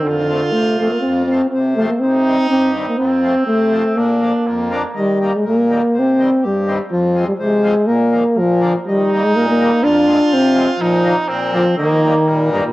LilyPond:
<<
  \new Staff \with { instrumentName = "Trumpet" } { \time 2/4 \key bes \major \tempo 4 = 123 f'2~ | f'4. r8 | ees'2 | c'2 |
d'4 bes4 | \key ees \major r2 | r2 | r2 |
r2 | ees'2 | f'2 | ees'4 c'4 |
bes4 g4 | }
  \new Staff \with { instrumentName = "Euphonium" } { \time 2/4 \key bes \major d4 a8 a16 bes16 | c'8 c'8 c'8 a16 bes16 | c'4 c'8 r16 bes16 | c'4 a4 |
bes4. r8 | \key ees \major g8. aes16 bes4 | c'4 g8. r16 | f8. g16 aes4 |
bes4 f8. r16 | g8. aes16 bes16 bes8. | d'4 c'8. r16 | f8. r8. f8 |
ees4. g,16 bes,16 | }
  \new Staff \with { instrumentName = "Accordion" } { \clef bass \time 2/4 \key bes \major << { r8 <f a c'>8 r8 <f a c'>8 | r8 <f a c'>8 r8 <f a c'>8 | r8 <ees g c'>8 r8 <ees g c'>8 | r8 <f a c'>8 r8 <f a c'>8 |
r8 <f bes d'>8 r8 <f bes d'>8 | \key ees \major r8 <ees g bes>8 r8 <ees g bes>8 | r8 <ees g c'>8 r8 <ees g c'>8 | r8 <f aes c'>8 r8 <f aes c'>8 |
r8 <ees f bes>8 r8 <d f bes>8 | r8 <ees g bes>8 r8 <ees g bes>8 | r8 <f aes c'>8 r8 <f aes c'>8 | r8 <ees f bes>8 r8 <d f bes>8 |
r8 <ees g bes>8 r8 <ees g bes>8 | } \\ { f,4 c4 | f,4 c4 | c4 g,4 | f,4 c4 |
bes,4 f,4 | ees4 bes,4 | c4 g,4 | f,4 c4 |
bes,4 bes,4 | ees4 bes,4 | f,4 c4 | bes,4 bes,4 |
ees4 bes,4 | } >> }
>>